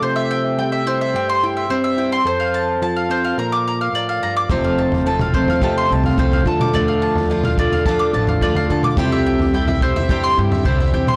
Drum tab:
T2 |----------------|----------------|-----o---------o|-----o---------o|
FT |----------------|----------------|o--o-o-o---o-o--|o--o-o-o---o-o--|
BD |----------------|----------------|o-----o-o---o-o-|------o-o---o---|

T2 |-----o---------o|
FT |o--o-o-o---o-o--|
BD |o-----o-o---o---|